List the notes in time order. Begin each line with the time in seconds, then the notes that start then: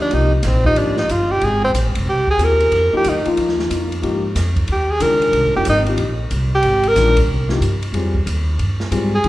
Already playing: D2
0.02 D4
0.11 C2 F3 A#3 D#4 G4, ride
0.15 D#4
0.35 G3
0.43 A#1 C4, snare, hi-hat pedal, ride
0.64 F3 A#3 D#4 G4, kick
0.76 G#1 D4, ride
0.97 D#4, snare
1.09 G1 F4, hi-hat pedal, ride
1.31 G4
1.41 G#1 G#4, ride
1.65 C4
1.74 A#1, hi-hat pedal, ride
1.86 G#1
1.95 F1, ride
2.07 C2 G4
2.27 G#4, muted upright bass stroke, kick
2.38 D#2 C4 F4 G4 G#4, hi-hat pedal, ride
2.44 A#4
2.60 ride
2.71 F2, ride
2.92 F3 A#3 D#4 G4, muted upright bass stroke
2.97 G4
3.04 D2, hi-hat pedal, ride
3.09 D#4
3.25 F3 A#3 D#4 F4, muted upright bass stroke, ride
3.37 D#2, ride
3.49 snare
3.59 snare
3.69 F2 F3 A#3 D#4 F4, hi-hat pedal, ride
3.92 ride
4.01 G#2 F3 A#3 D#4 G4, ride
4.35 F2, snare, hi-hat pedal, ride
4.56 kick, ride
4.68 D#2, ride
4.72 G4
4.91 G#4
5.00 C#2 D#3 G#3 D4 F4 A#4, hi-hat pedal, ride
5.22 ride
5.32 C2, ride
5.45 G#1
5.55 F1 F3 A#3 D#4 G4
5.65 G#1, hi-hat pedal, ride
5.69 D#4
5.86 F3 A#3 D#4 G4, ride
5.98 A#1, ride
6.31 C2, hi-hat pedal, ride
6.55 G4
6.62 G#1, ride
6.83 ride
6.88 A#4
6.96 A#1 D#3 G#3 D4 F4, snare, hi-hat pedal, ride
7.17 kick, ride
7.28 C2
7.49 F3 A#3 D#4 G4, snare
7.60 G2, hi-hat pedal, ride
7.82 ride
7.92 F2 G3 C4 F4 G#4, ride
8.15 kick
8.26 D#2, hi-hat pedal, ride
8.59 G2, ride
8.80 snare
8.91 G#2 G3 C4 F4 G#4, hi-hat pedal, ride
9.15 G#4
9.24 C3 D#3 G#3 D4 F4, ride